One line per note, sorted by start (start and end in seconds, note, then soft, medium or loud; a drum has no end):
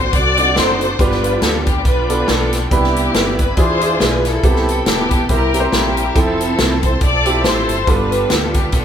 0.00 0.96 D3 medium
0.00 0.96 C4 medium
0.00 0.96 F#4 medium
0.00 0.13 C5 loud
0.00 0.97 C5 medium
0.00 0.96 D5 medium
0.00 2.67 D5 medium
0.00 0.97 F#5 medium
0.13 0.59 C2 loud
0.13 0.56 F#4 medium
0.13 0.96 A4 medium
0.13 0.57 D5 loud
0.13 kick loud
0.13 closed hi-hat medium
0.37 0.85 C4 medium
0.37 0.85 D4 medium
0.37 0.85 D#4 medium
0.37 0.42 F4 medium
0.37 closed hi-hat medium
0.44 0.88 F#4 medium
0.56 0.93 F#1 medium
0.56 0.97 D#4 medium
0.56 0.97 F#4 medium
0.56 0.99 C5 loud
0.56 snare loud
0.56 closed hi-hat medium
0.81 closed hi-hat medium
0.99 1.36 G1 loud
0.99 1.63 G2 medium
0.99 2.68 F3 medium
0.99 1.66 B3 medium
0.99 2.68 B3 medium
0.99 2.68 D4 medium
0.99 1.67 D4 medium
0.99 1.82 D4 medium
0.99 1.67 F4 medium
0.99 1.05 F4 medium
0.99 1.82 F4 medium
0.99 1.67 G4 medium
0.99 1.43 B4 loud
0.99 2.70 F5 medium
0.99 2.70 G5 medium
0.99 2.70 B5 medium
0.99 kick loud
0.99 closed hi-hat medium
1.05 2.71 G4 medium
1.11 snare soft
1.24 closed hi-hat medium
1.42 1.85 D2 medium
1.42 1.67 A4 medium
1.42 snare loud
1.42 closed hi-hat medium
1.66 1.86 G4 medium
1.66 kick medium
1.66 closed hi-hat medium
1.85 2.22 B1 medium
1.85 2.28 D4 medium
1.85 2.28 F4 medium
1.85 2.08 B4 medium
1.85 kick loud
1.85 closed hi-hat medium
2.09 2.57 B3 medium
2.09 2.57 D4 medium
2.09 2.57 F4 medium
2.09 2.57 A4 medium
2.09 2.27 B4 medium
2.09 closed hi-hat medium
2.28 2.65 B1 medium
2.28 2.69 D4 medium
2.28 2.69 F4 medium
2.28 2.72 A4 medium
2.28 snare loud
2.28 closed hi-hat medium
2.53 snare soft
2.53 closed hi-hat medium
2.71 3.08 C2 loud
2.71 3.35 C3 medium
2.71 3.56 C3 medium
2.71 2.77 D#3 medium
2.71 3.38 B3 medium
2.71 3.54 B3 medium
2.71 3.38 D4 medium
2.71 3.56 D4 medium
2.71 3.39 E4 medium
2.71 3.54 E4 medium
2.71 3.35 G4 medium
2.71 3.39 B4 medium
2.71 3.56 B4 medium
2.71 4.41 D5 medium
2.71 4.42 E5 medium
2.71 3.56 G5 medium
2.71 3.56 B5 medium
2.71 kick loud
2.71 closed hi-hat medium
2.77 3.56 E3 medium
2.84 snare soft
2.96 closed hi-hat medium
3.14 3.51 G1 medium
3.14 snare loud
3.14 closed hi-hat medium
3.39 3.58 B4 medium
3.39 kick medium
3.39 closed hi-hat medium
3.57 3.94 E2 medium
3.57 4.21 E3 medium
3.57 4.42 E3 medium
3.57 3.76 D4 medium
3.57 4.42 D4 medium
3.57 3.77 E4 medium
3.57 4.42 F4 medium
3.57 3.77 F4 medium
3.57 4.40 F4 medium
3.57 4.42 G#4 medium
3.57 3.77 G#4 medium
3.57 4.40 G#4 medium
3.57 3.98 C5 loud
3.57 4.42 G#5 medium
3.57 kick loud
3.57 closed hi-hat medium
3.81 4.29 D4 medium
3.81 4.29 F4 medium
3.81 4.29 G#4 medium
3.81 4.29 E5 medium
3.81 closed hi-hat medium
4.00 4.37 B1 medium
4.00 4.25 B4 medium
4.00 snare loud
4.00 closed hi-hat medium
4.25 4.87 E4 medium
4.25 4.68 A4 medium
4.25 snare soft
4.25 closed hi-hat medium
4.43 4.80 C2 medium
4.43 5.07 C3 medium
4.43 5.28 A3 medium
4.43 5.10 B3 medium
4.43 4.49 B3 soft
4.43 5.11 C4 medium
4.43 5.28 G4 medium
4.43 5.11 G4 medium
4.43 7.84 G4 medium
4.43 5.11 A4 medium
4.43 5.28 B4 medium
4.43 5.29 B4 medium
4.43 5.28 G5 medium
4.43 5.29 A5 medium
4.43 kick loud
4.43 closed hi-hat medium
4.49 5.30 C3 medium
4.56 snare soft
4.69 4.86 A4 medium
4.69 closed hi-hat medium
4.86 5.23 E1 loud
4.86 5.27 B3 medium
4.86 5.27 E4 medium
4.86 5.27 G4 medium
4.86 snare loud
4.86 closed hi-hat medium
5.11 kick medium
5.11 closed hi-hat medium
5.29 5.66 C2 loud
5.29 5.93 C3 medium
5.29 6.14 G3 medium
5.29 5.49 C4 medium
5.29 6.14 C4 medium
5.29 5.49 E4 medium
5.29 6.14 E4 medium
5.29 5.73 E4 medium
5.29 5.49 G4 medium
5.29 5.73 G4 medium
5.29 5.70 A#4 medium
5.29 6.14 A#4 medium
5.29 5.49 A#4 medium
5.29 7.85 E5 medium
5.29 6.14 G5 medium
5.29 6.14 A#5 medium
5.29 kick medium
5.29 closed hi-hat medium
5.54 6.01 C4 medium
5.54 6.01 E4 medium
5.54 6.02 G4 medium
5.54 5.59 B4 medium
5.54 closed hi-hat medium
5.60 6.04 C5 medium
5.72 6.09 A#1 medium
5.72 6.13 A#3 medium
5.72 6.13 E4 medium
5.72 6.16 G4 medium
5.72 snare loud
5.72 closed hi-hat medium
5.97 closed hi-hat medium
6.15 6.52 F1 loud
6.15 7.84 F3 medium
6.15 6.83 F3 medium
6.15 6.82 C4 medium
6.15 7.84 C4 medium
6.15 6.98 C4 medium
6.15 6.83 E4 medium
6.15 6.98 E4 medium
6.15 6.21 G#4 medium
6.15 6.83 A4 medium
6.15 7.84 E5 medium
6.15 8.85 A5 medium
6.15 kick loud
6.15 closed hi-hat medium
6.21 7.86 A4 medium
6.41 closed hi-hat medium
6.58 6.95 C2 medium
6.58 snare loud
6.58 closed hi-hat medium
6.83 7.02 C5 medium
6.83 kick medium
6.83 closed hi-hat medium
7.01 7.45 B1 medium
7.01 7.45 A4 medium
7.01 7.42 D5 loud
7.01 kick loud
7.01 closed hi-hat medium
7.25 7.73 C4 medium
7.25 7.73 E4 medium
7.25 7.73 F4 medium
7.25 7.74 G4 medium
7.25 closed hi-hat medium
7.44 7.65 A1 medium
7.44 7.85 E4 medium
7.44 7.85 A4 medium
7.44 7.88 C5 medium
7.44 snare loud
7.44 closed hi-hat medium
7.69 7.85 G1 medium
7.69 closed hi-hat medium
7.87 8.24 G1 loud
7.87 8.50 G2 medium
7.87 8.85 G3 medium
7.87 8.54 B3 medium
7.87 8.85 B3 medium
7.87 8.70 D4 medium
7.87 8.54 F4 medium
7.87 8.85 F4 medium
7.87 8.70 F4 medium
7.87 8.55 G4 medium
7.87 8.85 A4 medium
7.87 8.55 A4 medium
7.87 8.85 B4 medium
7.87 8.31 B4 medium
7.87 8.85 G5 medium
7.87 kick loud
7.87 closed hi-hat medium
8.12 closed hi-hat medium
8.30 8.67 D2 medium
8.30 8.55 A4 medium
8.30 snare loud
8.30 closed hi-hat medium
8.54 8.74 G4 medium
8.54 kick medium
8.54 closed hi-hat medium
8.72 8.85 B1 medium
8.72 8.85 D4 medium
8.72 8.85 F4 medium
8.72 8.85 A4 medium
8.72 kick loud
8.72 closed hi-hat medium